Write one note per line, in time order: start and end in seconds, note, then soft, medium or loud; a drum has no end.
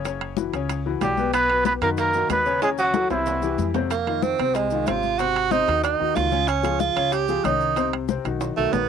0.00 0.48 F#1 medium
0.05 0.32 C#3 medium
0.05 0.32 C#4 medium
0.05 0.32 C#5 medium
0.05 high bongo medium
0.05 high conga soft
0.05 high timbale medium
0.05 maracas medium
0.21 high conga soft
0.21 high timbale medium
0.37 0.51 E3 medium
0.37 0.51 E4 medium
0.37 0.51 F#4 medium
0.37 high bongo medium
0.37 high conga medium
0.37 maracas medium
0.53 0.98 C#2 medium
0.53 0.80 C#3 medium
0.53 0.80 C#4 medium
0.53 0.80 C#5 medium
0.53 high bongo soft
0.53 high conga soft
0.53 high timbale medium
0.53 maracas soft
0.69 high bongo medium
0.69 high conga soft
0.69 high timbale medium
0.69 maracas medium
0.85 1.12 E3 medium
0.85 1.12 E4 medium
0.85 1.12 F#4 medium
0.85 high bongo soft
0.85 high conga soft
1.01 1.76 B1 medium
1.01 1.31 G3 medium
1.01 1.32 G4 medium
1.01 high bongo soft
1.01 low bongo medium
1.01 high conga medium
1.01 high timbale medium
1.01 low timbale medium
1.01 maracas medium
1.17 1.44 B2 medium
1.17 1.44 B3 medium
1.17 1.45 B4 medium
1.17 high bongo soft
1.17 high conga medium
1.17 maracas soft
1.33 1.63 B3 medium
1.33 1.63 B4 loud
1.33 high bongo medium
1.33 high conga soft
1.33 high timbale medium
1.33 maracas medium
1.49 1.76 B2 medium
1.49 1.77 B3 medium
1.49 1.77 B4 medium
1.49 high conga soft
1.49 high timbale medium
1.65 1.73 B3 medium
1.65 1.73 B4 loud
1.65 high bongo medium
1.65 high conga loud
1.65 maracas medium
1.81 2.26 F#2 medium
1.81 2.09 D#3 medium
1.81 1.89 A#3 medium
1.81 2.09 D#4 medium
1.81 2.09 F#4 medium
1.81 1.89 A#4 loud
1.81 high timbale medium
1.81 maracas soft
1.97 2.28 A#3 medium
1.97 2.29 A#4 loud
1.97 high bongo medium
1.97 high conga soft
1.97 high timbale medium
1.97 maracas medium
2.13 2.41 D#3 medium
2.13 2.41 D#4 medium
2.13 2.41 F#4 medium
2.13 high bongo soft
2.13 high conga soft
2.13 maracas medium
2.29 3.04 D#2 medium
2.29 2.60 B3 medium
2.29 2.61 B4 medium
2.29 high bongo soft
2.29 low bongo medium
2.29 high conga medium
2.29 high timbale medium
2.29 low timbale medium
2.29 maracas medium
2.46 2.59 C#3 medium
2.46 2.59 C#4 medium
2.46 2.59 C#5 medium
2.46 high bongo soft
2.46 maracas soft
2.62 2.89 C#3 medium
2.62 2.69 G#3 medium
2.62 2.89 C#4 medium
2.62 2.70 G#4 medium
2.62 2.89 C#5 medium
2.62 high bongo medium
2.62 high conga soft
2.62 high timbale medium
2.62 maracas medium
2.78 3.08 F#3 medium
2.78 3.08 F#4 medium
2.78 high conga soft
2.78 maracas medium
2.94 3.07 F#3 medium
2.94 3.08 F#4 medium
2.94 3.08 A4 medium
2.94 high bongo medium
2.94 high conga loud
2.94 high timbale medium
2.94 maracas medium
3.10 3.55 C2 medium
3.10 3.37 C3 medium
3.10 3.70 E3 medium
3.10 3.37 C4 medium
3.10 3.71 E4 medium
3.10 3.37 C5 medium
3.10 high bongo medium
3.10 high conga soft
3.10 high timbale medium
3.10 maracas soft
3.26 low bongo medium
3.26 high conga soft
3.26 low timbale medium
3.26 maracas medium
3.42 3.69 E3 medium
3.42 3.69 E4 medium
3.42 3.69 G4 medium
3.42 low bongo medium
3.42 high conga soft
3.42 maracas medium
3.58 4.33 F2 medium
3.58 low bongo medium
3.58 high conga medium
3.58 maracas medium
3.74 3.88 C3 medium
3.74 3.88 C4 medium
3.74 3.89 C5 medium
3.74 low bongo medium
3.74 high conga medium
3.74 low timbale medium
3.74 maracas soft
3.91 4.25 A#3 medium
3.91 high bongo medium
3.91 high conga soft
3.91 high timbale medium
3.91 maracas medium
4.07 4.33 D#3 medium
4.07 4.34 D#4 medium
4.07 4.34 F4 medium
4.07 high conga soft
4.07 high timbale medium
4.23 4.57 C4 medium
4.23 high bongo medium
4.23 high conga medium
4.23 maracas medium
4.39 4.84 C2 medium
4.39 4.66 C3 medium
4.39 4.66 C4 medium
4.39 4.66 C5 medium
4.39 high bongo soft
4.39 high timbale medium
4.39 maracas soft
4.54 4.89 G#3 medium
4.54 high bongo medium
4.54 high conga soft
4.54 high timbale medium
4.54 maracas medium
4.70 4.85 D#3 medium
4.70 4.85 D#4 medium
4.70 4.85 F4 medium
4.70 high bongo soft
4.70 high conga soft
4.70 maracas medium
4.87 5.62 G#1 medium
4.87 5.14 C3 medium
4.87 5.14 C4 medium
4.87 5.21 F4 medium
4.87 5.14 C5 medium
4.87 high bongo soft
4.87 low bongo medium
4.87 high conga medium
4.87 high timbale medium
4.87 low timbale medium
4.87 maracas medium
5.03 high bongo soft
5.03 high conga medium
5.03 maracas soft
5.19 5.46 C3 medium
5.19 5.46 C4 medium
5.19 5.53 F#4 medium
5.19 5.46 C5 medium
5.19 high bongo medium
5.19 high conga soft
5.19 high timbale medium
5.19 maracas medium
5.35 high conga soft
5.35 high timbale medium
5.51 5.65 C3 medium
5.51 5.65 C4 medium
5.51 5.83 D#4 medium
5.51 5.65 C5 medium
5.51 high bongo medium
5.51 high conga medium
5.51 maracas medium
5.67 5.98 D#2 medium
5.67 5.94 D#3 medium
5.67 5.94 D#4 medium
5.67 5.94 F#4 medium
5.67 high bongo soft
5.67 high conga soft
5.67 high timbale medium
5.67 maracas soft
5.83 6.17 D#4 medium
5.83 high bongo medium
5.83 high conga soft
5.83 high timbale medium
5.83 maracas medium
5.99 6.15 D#2 medium
5.99 6.26 D#3 medium
5.99 6.26 D#4 medium
5.99 6.27 F#4 medium
5.99 high bongo soft
5.99 high conga soft
6.15 6.91 C#2 medium
6.15 6.49 F4 medium
6.15 high bongo soft
6.15 low bongo medium
6.15 high conga medium
6.15 high timbale medium
6.15 low timbale medium
6.15 maracas medium
6.31 6.58 C#3 medium
6.31 6.58 C#4 medium
6.31 6.59 C#5 medium
6.31 high bongo soft
6.31 high conga medium
6.31 maracas soft
6.47 6.82 C#4 medium
6.47 high bongo medium
6.47 high conga soft
6.47 high timbale medium
6.47 maracas medium
6.63 6.90 F3 medium
6.63 6.90 F4 medium
6.63 6.90 G#4 medium
6.63 high conga soft
6.63 high timbale medium
6.63 maracas medium
6.80 7.14 F4 medium
6.80 high bongo medium
6.80 high conga medium
6.80 maracas medium
6.96 7.41 C#2 medium
6.96 7.22 C#3 medium
6.96 7.23 C#4 medium
6.96 7.23 C#5 medium
6.96 high bongo soft
6.96 high timbale medium
6.96 maracas soft
7.12 7.46 G4 medium
7.12 high bongo medium
7.12 high conga soft
7.12 high timbale medium
7.12 maracas medium
7.28 7.42 F3 medium
7.28 7.42 F4 medium
7.28 7.42 G#4 medium
7.28 high bongo soft
7.28 high conga soft
7.28 maracas medium
7.44 8.19 C2 medium
7.44 7.71 D#3 medium
7.44 7.71 C#4 medium
7.44 7.93 D#4 medium
7.44 7.71 C#5 medium
7.44 high bongo soft
7.44 low bongo medium
7.44 high conga medium
7.44 high timbale medium
7.44 maracas medium
7.60 high bongo soft
7.60 maracas soft
7.76 8.03 C3 medium
7.76 8.03 C4 medium
7.76 8.04 C5 medium
7.76 high bongo medium
7.76 high conga soft
7.76 high timbale medium
7.76 maracas medium
7.93 high conga soft
7.93 high timbale medium
8.08 8.22 C3 medium
8.08 8.23 C4 medium
8.08 8.23 C5 medium
8.08 high bongo medium
8.08 high conga medium
8.08 maracas medium
8.25 8.55 B1 medium
8.25 8.51 D#3 medium
8.25 8.52 D#4 medium
8.25 8.52 F#4 medium
8.25 high bongo soft
8.25 high conga soft
8.25 high timbale medium
8.25 maracas soft
8.41 high bongo medium
8.41 high conga soft
8.41 high timbale medium
8.41 maracas medium
8.57 8.72 B1 medium
8.57 8.83 D#3 medium
8.57 8.74 A3 medium
8.57 8.84 D#4 medium
8.57 8.84 F#4 medium
8.57 high bongo soft
8.57 high conga soft
8.73 8.89 A#1 medium
8.73 8.88 B3 medium
8.73 high bongo soft
8.73 low bongo medium
8.73 high conga medium
8.73 low timbale medium
8.73 maracas medium